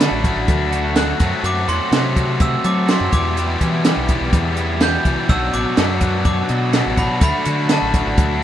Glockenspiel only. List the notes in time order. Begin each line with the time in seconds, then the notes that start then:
0.01 A5
0.97 F#6
1.46 D6
1.69 C6
2.42 E6
2.66 D6
2.90 C6
3.13 D6
4.82 G6
5.30 E6
5.54 D6
6.25 D6
6.98 B5
7.24 B5
7.72 A5